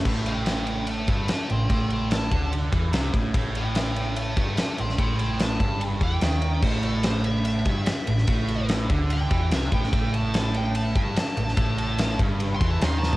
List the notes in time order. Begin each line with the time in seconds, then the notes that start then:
Already playing: A3
0.05 A1 A2, kick, crash
0.26 E5 G5, ride
0.46 E5 G5, snare, ride
0.67 E5 G5, ride
0.87 E5 A5, ride
1.07 G1 G2 E5 A5, kick, ride
1.28 E5 A5, muted overdriven electric guitar stroke, muted fingered electric bass stroke, muted distorted electric guitar stroke, snare, ride
1.49 A1 A2 G5 C6, ride
1.69 A1 A2 G5 C6, kick, ride
1.90 G5 C6, ride
2.11 A5, snare, ride
2.31 D2 D3, kick, ride
2.53 ride
2.72 E2 E3, kick, ride
2.92 C2 C3, snare, ride
3.13 A1 A2, kick, ride
3.34 A1 A2, kick, ride
3.55 E5 G5, ride
3.75 E5 G5, snare, ride
3.96 E5 G5, ride
4.16 E5 A5, ride
4.37 G1 G2 E5 A5, kick, ride
4.57 E5 A5, muted overdriven electric guitar stroke, muted fingered electric bass stroke, muted distorted electric guitar stroke, snare, ride
4.78 A1 A2 G5 C6, ride
4.89 snare
4.98 A1 A2 G5 C6, kick, ride
5.19 G5 C6, ride
5.39 A5, snare, ride
5.60 G1 G2, kick, ride
5.81 ride
6.01 E2 E3 G5, kick, ride
6.21 D#2 D#3, snare, ride
6.42 ride
6.62 A1 A2 C5, kick, crash
6.83 A4, ride
7.03 C5, snare, ride
7.24 E5, ride
7.45 E5, ride
7.65 G1 G2, kick, ride
7.86 muted overdriven electric guitar stroke, muted distorted electric guitar stroke, muted fingered electric bass stroke, snare, ride
8.07 A1 A2, ride
8.18 snare
8.27 A1 A2, kick, ride
8.48 ride
8.69 snare, ride
8.89 D2 D3, kick, ride
9.10 G5, ride
9.30 E2 E3, kick, ride
9.51 C2 C3 E5, snare, ride
9.72 A1 A2 G5, kick, ride
9.84 snare
9.93 A1 A2, kick, ride
10.14 A5, ride
10.34 snare, ride
10.54 G5, ride
10.75 A5, ride
10.95 G1 G2 A5, kick, ride
11.16 muted distorted electric guitar stroke, muted overdriven electric guitar stroke, muted fingered electric bass stroke, snare, ride
11.37 A1 A2, ride
11.48 snare
11.57 A1 A2, kick, ride
11.78 ride
11.98 snare, ride
12.19 G1 G2, kick, ride
12.40 ride
12.56 C6
12.60 E2 E3, kick, ride
12.70 A5
12.81 D#2 D#3 C6, snare, ride
12.99 A5
13.03 snare
13.13 floor tom